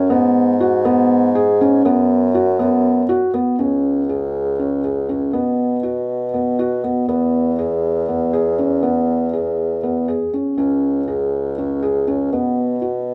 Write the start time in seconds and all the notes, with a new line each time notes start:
0.10 G#2 B3
0.60 F#4
0.85 B3
1.35 G#4
1.61 C#4
1.85 F#2 B3
2.35 F#4
2.59 B3
3.09 F#4
3.34 B3
3.59 C#2 C#4
4.09 G#4
4.59 C#4
4.84 G#4
5.09 C#4
5.33 B2 B3
5.83 F#4
6.34 B3
6.59 F#4
6.84 B3
7.08 E2 B3
7.59 G#4
8.08 B3
8.33 G#4
8.59 C#4
8.83 B3
9.33 G#4
9.83 B3
10.08 G#4
10.34 C#4
10.58 C#2 C#4
11.08 G#4
11.58 C#4
11.83 G#4
12.07 C#4
12.32 B2 B3
12.82 F#4